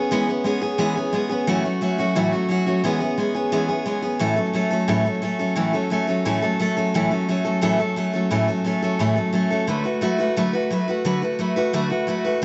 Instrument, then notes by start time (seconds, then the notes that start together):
steel-string acoustic guitar
Already playing: B3 C#4 G#4
0.11 E3 G#3 B3 C#4 G#4
0.27 B3 C#4 G#4
0.44 G#3 B3 C#4 G#4
0.61 B3 C#4 G#4
0.78 E3 G#3 B3 C#4 G#4
0.95 B3 C#4 G#4
1.13 G#3 B3 C#4 G#4
1.29 B3 C#4 G#4
1.47 A2 E3 F#3 A3 C#4 F#4
1.64 F#3 A3 C#4 F#4
1.81 F#3 A3 C#4 F#4
1.98 F#3 A3 C#4 F#4
2.15 A2 E3 F#3 A3 C#4 F#4
2.32 F#3 A3 C#4 F#4
2.49 F#3 A3 C#4 F#4
2.66 F#3 A3 C#4 F#4
2.84 E3 G#3 B3 C#4 G#4
3.00 B3 C#4 G#4
3.18 G#3 B3 C#4 G#4
3.35 B3 C#4 G#4
3.52 E3 G#3 B3 C#4 G#4
3.69 B3 C#4 G#4
3.86 G#3 B3 C#4 G#4
4.02 B3 C#4 G#4
4.19 A2 E3 F#3 A3 C#4 A4
4.36 F#3 A3 C#4 A4
4.53 F#3 A3 C#4 A4
4.71 F#3 A3 C#4 A4
4.88 A2 E3 F#3 A3 C#4 A4
5.05 F#3 A3 C#4 A4
5.22 F#3 A3 C#4 A4
5.39 F#3 A3 C#4 A4
5.56 A2 E3 F#3 A3 C#4 A4
5.73 F#3 A3 C#4 A4
5.90 F#3 A3 C#4 A4
6.07 F#3 A3 C#4 A4
6.25 A2 E3 F#3 A3 C#4 A4
6.42 F#3 A3 C#4 A4
6.59 F#3 A3 C#4 A4
6.77 F#3 A3 C#4 A4
6.94 A2 E3 F#3 A3 C#4 A4
7.11 F#3 A3 C#4 A4
7.29 F#3 A3 C#4 A4
7.45 F#3 A3 C#4 A4
7.61 A2 E3 F#3 A3 C#4 A4
7.80 F#3 A3 C#4 A4
7.96 F#3 A3 C#4 A4
8.14 F#3 A3 C#4 A4
8.31 A2 E3 F#3 A3 C#4 A4
8.48 F#3 A3 C#4 A4
8.64 F#3 A3 C#4 A4
8.83 F#3 A3 C#4 A4
8.99 A2 E3 F#3 A3 C#4 A4
9.16 F#3 A3 C#4 A4
9.33 F#3 A3 C#4 A4
9.50 F#3 A3 C#4 A4
9.67 D3 F#3 A3 F#4 B4
9.84 A3 F#4 B4
10.01 F#3 A3 F#4 B4
10.19 A3 F#4 B4
10.36 D3 F#3 A3 F#4 B4
10.53 A3 F#4 B4
10.70 F#3 A3 F#4 B4
10.88 A3 F#4 B4
11.05 D3 F#3 A3 F#4 B4
11.22 A3 F#4 B4
11.39 F#3 A3 F#4 B4
11.56 A3 F#4 B4
11.73 D3 F#3 A3 F#4 B4
11.90 A3 F#4 B4
12.07 F#3 A3 F#4 B4
12.25 A3 F#4 B4
12.42 D3